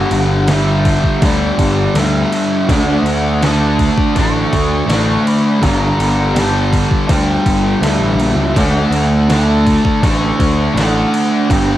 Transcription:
Already playing: G2 D3 G3 D4 F#5
0.11 G1, crash
0.48 G2 D3 G3 E5, snare, crash
0.85 kick, crash
1.04 kick
1.21 D2 G2 D3 G3, kick, crash
1.25 D5
1.58 G1, kick, crash
1.94 D2 G2 D3 E5, snare, crash
1.99 G3
2.32 crash
2.68 D2 D3 A3 D4 F#5, kick, crash
3.02 D2, crash
3.42 D3 A3 D4 A5, snare, crash
3.79 kick, crash
3.97 kick
4.15 A1 D3 A3 D4 C#6, kick, crash
4.53 D2, kick, crash
4.86 A1 D3 A3 D4, snare, crash
5.27 B5, crash
5.59 G1 G2 D3 G3 A#5, kick, crash
5.98 G1, crash
6.34 G2 D3 G3, snare, crash
6.39 A5
6.73 kick, crash
6.91 kick
7.07 D2 G2 D3 G3 G5, kick, crash
7.46 G1, kick, crash
7.81 D2 G2 D3 G3 E5, snare, crash
7.99 A1
8.15 A#1
8.20 crash
8.35 C#2
8.54 D2 D3 A3 D4 F#5, kick, crash
8.90 D2, crash
9.29 D3 A3 D4 A5, snare, crash
9.66 kick, crash
9.85 kick
10.01 A1 D3 A3 D4 C#6, kick, crash
10.39 D2, kick, crash
10.74 A1 D3 A3, snare, crash
10.78 D4 F#5
11.14 crash
11.49 G1 G2 D3 G3 G5, kick, crash

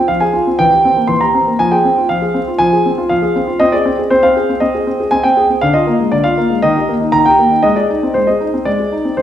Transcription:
0.08 F3 F5
0.20 G#4 G#5
0.33 F4
0.47 C4
0.59 E3 G5
0.72 G4
0.85 C4
0.97 A#3
1.07 E3 C6
1.21 G4 A#5
1.35 C4
1.47 A#3
1.59 F3 G#5
1.71 G#4 G5
1.85 C4
1.98 F4
2.09 F3 F5
2.22 G#4
2.34 C4
2.48 F4
2.58 F3 G#5
2.73 G#4
2.86 C4
2.98 F4
3.09 F3 F5
3.22 G#4
3.36 C4
3.47 F4
3.60 C4 D#5
3.72 G#4 D5
3.85 C4
3.99 G#4
4.10 C4 C5
4.23 C4 F5
4.37 G#4
4.49 C4
4.60 C4 D#5
4.75 G#4
4.87 C4
5.00 G#4
5.11 C4 G#5
5.23 C4 G5
5.37 G#4
5.50 C4
5.61 D3 F5
5.74 F4 D#5
5.87 A#3
6.00 G#3
6.12 D3 D5
6.24 F4 F5
6.38 A#3
6.50 G#3
6.62 D#3 D#5
6.76 G4
6.89 A#3
7.01 D#4
7.12 D#3 A#5
7.26 G4 G5
7.39 A#3
7.51 D#4
7.63 G#3 D#5
7.76 G#4 D5
7.90 D#4
8.03 C4
8.14 G#3 C5
8.27 G#4 D#5
8.40 D#4
8.54 C4
8.65 G#3 D5
8.80 G#4
8.92 D#4
9.05 C4
9.17 G#3 C5

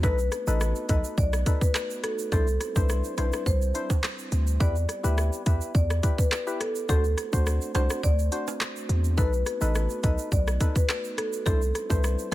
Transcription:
Already playing: A3
0.03 B1 B3 D#4 F#4 A4 B4, kick, shaker
0.18 shaker
0.32 cross-stick, closed hi-hat, shaker
0.47 A1 D#4 A4 B4 D#5, shaker
0.61 cross-stick, shaker
0.75 shaker
0.89 B1 D#4 A4 B4 D#5, kick, closed hi-hat, shaker
1.04 shaker
1.18 B1 D5, kick, shaker
1.33 cross-stick, shaker
1.46 D#4 A4 B4, kick, closed hi-hat, shaker
1.61 B4, kick, shaker
1.75 cross-stick, clap, shaker
1.90 shaker
2.04 A4, cross-stick, closed hi-hat, shaker
2.19 shaker
2.32 C2 G3 C4 D4 E4 A4 C5, kick, shaker
2.47 shaker
2.60 cross-stick, closed hi-hat, shaker
2.75 C2 D4 E4 B4 C5, kick, shaker
2.89 cross-stick, shaker
3.04 shaker
3.18 B1 D4 E4 B4 C5, cross-stick, closed hi-hat, high timbale, shaker
3.33 cross-stick, shaker
3.46 C2 C5, kick, shaker
3.62 shaker
3.74 D4 E4 C5, closed hi-hat, shaker
3.90 kick, high timbale, shaker
4.03 cross-stick, clap, shaker
4.19 shaker
4.32 D2, closed hi-hat, shaker
4.47 shaker
4.60 E2 B3 E4 G4 B4 D5, kick, shaker
4.75 shaker
4.89 cross-stick, closed hi-hat, shaker
5.03 D2 E4 G4 B4 E5, shaker
5.18 cross-stick, shaker
5.33 shaker
5.46 E2 E4 G4 B4 E5, kick, closed hi-hat, shaker
5.61 shaker
5.75 E2 D5, kick, shaker
5.90 cross-stick, shaker
6.03 E4 G4 B4, kick, closed hi-hat, shaker
6.18 B4, kick, shaker
6.32 cross-stick, clap, shaker
6.47 E4 G4 B4, shaker
6.60 A4, cross-stick, closed hi-hat, shaker
6.76 shaker
6.89 D2 A3 C4 D4 F#4 A4 C5, kick, shaker
7.04 shaker
7.18 cross-stick, closed hi-hat, shaker
7.33 D2 D4 F#4 C5, kick, shaker
7.46 cross-stick, shaker
7.61 shaker
7.75 C2 D4 F#4 C5, cross-stick, closed hi-hat, high timbale, shaker
7.90 cross-stick, shaker
8.03 D2 D5, kick, shaker
8.19 shaker
8.32 D4 F#4 C5, closed hi-hat, shaker
8.48 high timbale, shaker
8.61 cross-stick, clap, shaker
8.76 shaker
8.89 E2, closed hi-hat, shaker
9.04 shaker
9.17 B1 A3 B3 D#4 A4 B4, kick, shaker
9.33 shaker
9.46 cross-stick, closed hi-hat, shaker
9.61 A1 D#4 A4 B4 D#5, shaker
9.75 cross-stick, shaker
9.89 shaker
10.03 B1 D#4 A4 B4 D#5, kick, closed hi-hat, shaker
10.18 shaker
10.32 B1 D5, kick, shaker
10.47 cross-stick, shaker
10.61 D#4 A4 B4, kick, closed hi-hat, shaker
10.75 B4, kick, shaker
10.89 cross-stick, clap, shaker
11.04 shaker
11.17 A4, cross-stick, closed hi-hat, shaker
11.33 shaker
11.46 C2 G3 C4 D4 E4 A4 C5, kick, shaker
11.62 shaker
11.75 cross-stick, closed hi-hat, shaker
11.90 C2 D4 E4 B4 C5, kick, shaker
12.04 cross-stick, shaker
12.19 shaker

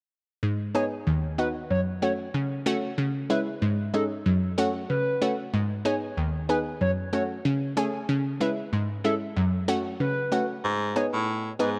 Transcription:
0.43 G#2
0.75 B3 D#4 G#4 C#5
1.07 D#2
1.38 B3 D#4 F#4 B4
1.70 F#2 C#5
2.02 A3 C#4 F#4 C#5
2.34 C#3
2.66 A3 C#4 F#4
2.98 C#3
3.30 G#3 C#4 E4 B4
3.62 G#2
3.94 G#3 C#4 D#4 A4
4.26 F#2
4.58 A3 C#4 F#4
4.89 C#3 B4
5.22 A3 C#4 F#4
5.54 G#2
5.85 B3 D#4 G#4 C#5
6.17 D#2
6.49 B3 D#4 G#4 B4
6.81 F#2 C#5
7.13 A3 C#4 F#4 C#5
7.45 C#3
7.77 A3 C#4 G#4
8.09 C#3
8.40 G#3 C#4 E4 B4
8.73 G#2
9.04 G#3 C#4 E4 A4
9.37 F#2
9.68 A3 C#4 F#4
10.00 C#3 B4
10.32 A3 C#4 F#4
10.64 G#2
10.96 B3 D#4 G#4 C#5
11.13 A2
11.59 G#2 B3 D#4 G#4 B4

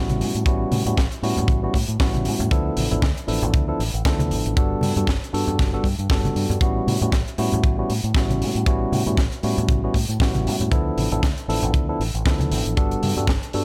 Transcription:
Already playing: A1 G3 B3 C#4 E4 F#4
0.09 closed hi-hat, high conga
0.20 A2, open hi-hat
0.35 A2, closed hi-hat
0.46 A1 G3 B3 C#4 E4 F#4, kick, closed hi-hat
0.71 A2, open hi-hat, high conga
0.86 A2 G3 B3 C#4 E4 F#4, closed hi-hat, low conga
0.97 A1, kick, snare, closed hi-hat
1.12 closed hi-hat
1.22 A2 G3 B3 C#4 E4 F#4, open hi-hat
1.37 A2, closed hi-hat, low conga
1.48 A1, kick, closed hi-hat, high conga
1.63 G3 B3 C#4 E4 F#4
1.74 A2, kick, open hi-hat
1.88 A2, closed hi-hat
1.99 A1 G3 B3 C#4 E4 F#4, kick, snare, open hi-hat
2.15 closed hi-hat, high conga
2.25 A2, open hi-hat
2.39 A2, closed hi-hat, low conga
2.51 D2 F3 B3 D4 E4 A4, kick, closed hi-hat
2.77 A1, open hi-hat, high conga
2.91 A1 F3 B3 D4 E4 A4, closed hi-hat, low conga
3.02 D2, kick, snare, closed hi-hat
3.17 closed hi-hat
3.27 A1 F3 B3 D4 E4 A4, open hi-hat
3.42 A1, closed hi-hat, low conga
3.53 D2, kick, closed hi-hat, high conga
3.68 F3 B3 D4 E4 A4
3.79 A1, open hi-hat
3.94 A1, closed hi-hat
4.05 D2 F3 B3 D4 E4 A4, kick, snare, closed hi-hat
4.19 closed hi-hat, high conga
4.31 A1, open hi-hat
4.45 A1, closed hi-hat
4.56 G1 G3 B3 D4 F#4 A4, kick, closed hi-hat
4.81 G2, open hi-hat, high conga
4.96 G2 G3 B3 D4 F#4 A4, closed hi-hat, low conga
5.07 G1, kick, snare, closed hi-hat
5.24 closed hi-hat
5.33 G2 G3 B3 D4 F#4 A4, open hi-hat
5.48 G2, closed hi-hat, low conga
5.58 G1, kick, snare, closed hi-hat, high conga
5.73 G3 B3 D4 F#4 A4
5.84 G2, kick, open hi-hat
5.99 G2, closed hi-hat
6.09 G1 G3 B3 D4 F#4 A4, kick, snare, open hi-hat
6.24 closed hi-hat, high conga
6.36 G2, open hi-hat
6.50 G2, closed hi-hat, low conga
6.61 A1 G3 B3 C#4 E4 F#4, kick, closed hi-hat
6.87 A2, open hi-hat, high conga
7.01 A2 G3 B3 C#4 E4 F#4, closed hi-hat, low conga
7.12 A1, kick, snare, closed hi-hat
7.28 closed hi-hat
7.38 A2 G3 B3 C#4 E4 F#4, open hi-hat
7.52 A2, closed hi-hat, low conga
7.63 A1, kick, closed hi-hat, high conga
7.78 G3 B3 C#4 E4 F#4
7.90 A2, open hi-hat
8.04 A2, closed hi-hat
8.14 A1 G3 B3 C#4 E4 F#4, kick, snare, closed hi-hat
8.30 closed hi-hat, high conga
8.41 A2, open hi-hat
8.55 A2, closed hi-hat
8.66 A1 G3 B3 C#4 E4 F#4, kick, closed hi-hat
8.92 A2, open hi-hat, high conga
9.06 A2 G3 B3 C#4 E4 F#4, closed hi-hat, low conga
9.17 A1, kick, snare, closed hi-hat
9.32 closed hi-hat
9.43 A2 G3 B3 C#4 E4 F#4, open hi-hat
9.58 A2, closed hi-hat, low conga
9.68 A1, kick, closed hi-hat, high conga
9.83 G3 B3 C#4 E4 F#4
9.94 A2, kick, open hi-hat
10.09 A2, closed hi-hat
10.20 A1 G3 B3 C#4 E4 F#4, kick, snare, open hi-hat
10.34 closed hi-hat, high conga
10.46 A2, open hi-hat
10.60 A2, closed hi-hat, low conga
10.71 D2 F3 B3 D4 E4 A4, kick, closed hi-hat
10.97 A1, open hi-hat, high conga
11.11 A1 F3 B3 D4 E4 A4, closed hi-hat, low conga
11.23 D2, kick, snare, closed hi-hat
11.38 closed hi-hat
11.48 A1 F3 B3 D4 E4 A4, open hi-hat
11.62 A1, closed hi-hat, low conga
11.74 D2, kick, closed hi-hat, high conga
11.88 F3 B3 D4 E4 A4
12.00 A1, open hi-hat
12.14 A1, closed hi-hat
12.25 D2 F3 B3 D4 E4 A4, kick, snare, closed hi-hat
12.40 closed hi-hat, high conga
12.51 A1, open hi-hat
12.66 A1, closed hi-hat
12.77 G1 G3 B3 D4 F#4 A4, kick, closed hi-hat
12.91 closed hi-hat
13.03 G2, open hi-hat, high conga
13.17 G2 G3 B3 D4 F#4 A4, closed hi-hat, low conga
13.27 G1, kick, snare, closed hi-hat
13.43 closed hi-hat
13.53 G2 G3 B3 D4 F#4 A4, open hi-hat

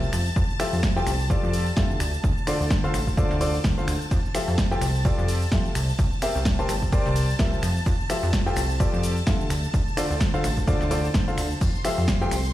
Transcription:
Already playing: A5
0.03 shaker
0.13 F2, finger snap, open hi-hat, tambourine, shaker
0.26 tambourine, shaker
0.36 F2, kick, tambourine, shaker
0.50 shaker
0.60 F3 F4 G4 A4 E5, finger snap, open hi-hat, tambourine, shaker
0.73 F2, tambourine, shaker
0.83 kick, snare, tambourine, shaker
0.96 F3 F4 G4 A4 G5, shaker
1.07 C2, finger snap, open hi-hat, tambourine, shaker
1.19 tambourine, shaker
1.30 F3 F4 G4 A4 D5, kick, tambourine, shaker
1.43 F2, shaker
1.53 open hi-hat, tambourine, shaker
1.66 tambourine, shaker
1.77 F2 D3 F4 G4 A4 E5, kick, snare, tambourine, shaker
1.91 shaker
2.00 D2, finger snap, open hi-hat, tambourine, shaker
2.13 tambourine, shaker
2.24 D2, kick, tambourine, shaker
2.38 shaker
2.47 D3 F4 A4 C5 D5, finger snap, open hi-hat, tambourine, shaker
2.60 D2, tambourine, shaker
2.70 kick, snare, shaker
2.84 D3 F4 A4 C5 F5, shaker
2.94 A1, finger snap, open hi-hat, tambourine, shaker
3.07 kick, tambourine, shaker
3.17 D3 F4 A4 C5 D5, kick, tambourine, shaker
3.31 D2, snare, shaker
3.41 D3 F4 A4 C5 D5, open hi-hat, tambourine, shaker
3.54 tambourine, shaker
3.64 D2, kick, snare, tambourine, shaker
3.78 D3 F4 A4 C5 F5, shaker
3.88 D2, finger snap, open hi-hat, tambourine, shaker
4.01 tambourine, shaker
4.11 F2 A5, kick, ride, tambourine, shaker
4.25 shaker
4.35 F3 F4 G4 A4 E5, finger snap, open hi-hat, ride, tambourine, shaker
4.48 F2, tambourine, shaker
4.58 kick, snare, ride, tambourine, shaker
4.71 F3 F4 G4 A4 G5, shaker
4.81 C2, finger snap, open hi-hat, ride, tambourine, shaker
4.95 tambourine, shaker
5.05 F3 F4 G4 A4 D5, kick, ride, shaker
5.18 F2, shaker
5.28 open hi-hat, ride, tambourine, shaker
5.42 tambourine, shaker
5.52 F2 F4 G4 A4 E5, kick, snare, ride, tambourine, shaker
5.66 shaker
5.75 C2, finger snap, open hi-hat, ride, tambourine, shaker
5.89 tambourine, shaker
5.99 C2, kick, ride, tambourine, shaker
6.13 shaker
6.22 C4 G4 A#4 C5 E5, finger snap, open hi-hat, ride, tambourine, shaker
6.35 C2, tambourine, shaker
6.45 kick, snare, ride, tambourine, shaker
6.59 C4 G4 A#4 C5 A5, shaker
6.69 G1, finger snap, open hi-hat, ride, tambourine, shaker
6.82 kick, tambourine, shaker
6.92 C4 G4 A#4 C5 D5, kick, ride, tambourine, shaker
7.06 C2, snare, shaker
7.16 open hi-hat, ride, tambourine, shaker
7.30 tambourine, shaker
7.39 C2 F3 G4 A#4 C5 E5, kick, snare, ride, shaker
7.53 shaker
7.63 F2, finger snap, open hi-hat, ride, tambourine, shaker
7.76 tambourine, shaker
7.85 F2, kick, ride, tambourine, shaker
8.00 shaker
8.10 F3 F4 G4 A4 E5, finger snap, open hi-hat, ride, tambourine, shaker
8.23 F2, tambourine, shaker
8.33 kick, snare, ride, tambourine, shaker
8.46 F3 F4 G4 A4 G5, shaker
8.56 C2, finger snap, open hi-hat, ride, tambourine, shaker
8.70 tambourine, shaker
8.80 F3 F4 G4 A4 D5, kick, ride, tambourine, shaker
8.93 F2, shaker
9.03 open hi-hat, ride, tambourine, shaker
9.17 tambourine, shaker
9.27 F2 D3 F4 G4 A4 E5, kick, snare, ride, tambourine, shaker
9.41 shaker
9.50 D2, finger snap, open hi-hat, ride, tambourine, shaker
9.63 tambourine, shaker
9.74 D2, kick, ride, tambourine, shaker
9.88 shaker
9.97 D3 F4 A4 C5 D5, finger snap, open hi-hat, ride, tambourine, shaker
10.10 D2, tambourine, shaker
10.20 kick, snare, ride, tambourine, shaker
10.34 D3 F4 A4 C5 F5, shaker
10.44 A1, finger snap, open hi-hat, ride, tambourine, shaker
10.57 kick, tambourine, shaker
10.67 D3 F4 A4 C5 D5, kick, ride, tambourine, shaker
10.81 D2, snare, shaker
10.91 D3 F4 A4 C5 D5, open hi-hat, ride, tambourine, shaker
11.04 tambourine, shaker
11.14 D1, kick, snare, ride, tambourine, shaker
11.28 D3 F4 A4 C5 F5, shaker
11.38 D2, finger snap, open hi-hat, ride, tambourine, shaker
11.51 tambourine, shaker
11.61 F2 C6, kick, crash, ride, tambourine, shaker
11.75 shaker
11.85 F3 F4 G4 A4 E5, finger snap, open hi-hat, ride, tambourine, shaker
11.98 F2, tambourine, shaker
12.08 kick, snare, ride, shaker
12.21 F3 F4 G4 A4 G5, shaker
12.31 C2, finger snap, open hi-hat, ride, tambourine, shaker
12.45 tambourine, shaker

